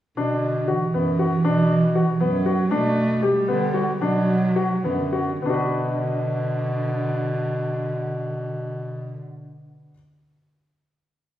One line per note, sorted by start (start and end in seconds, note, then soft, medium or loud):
0.17 0.81 B2 medium
0.17 0.71 D3 medium
0.17 0.44 D4 medium
0.68 2.21 E3 medium
0.68 0.82 F#4 medium
0.94 1.36 F#2 medium
0.94 1.08 B3 medium
1.19 1.33 F#4 medium
1.44 2.07 B2 medium
1.44 1.72 D4 medium
1.95 2.09 F#4 medium
2.20 2.63 F#2 medium
2.20 2.73 F#3 medium
2.20 2.34 B3 medium
2.46 2.60 F#4 medium
2.71 3.35 B2 medium
2.71 3.25 A3 medium
2.71 2.99 D4 medium
3.22 4.01 G3 medium
3.22 3.36 G4 medium
3.48 3.92 D3 medium
3.48 3.62 B3 medium
3.74 3.88 F#4 medium
4.01 4.70 B2 medium
4.01 4.86 F#3 medium
4.01 4.31 D4 medium
4.56 4.71 F#4 medium
4.84 5.32 F#2 medium
4.84 5.42 D3 medium
4.84 4.99 B3 medium
5.12 5.28 F#4 medium
5.42 9.18 B2 medium
5.42 9.19 D3 medium
5.42 9.88 B3 medium
5.42 9.90 D4 medium
5.50 9.92 F#4 medium
5.54 9.94 B4 medium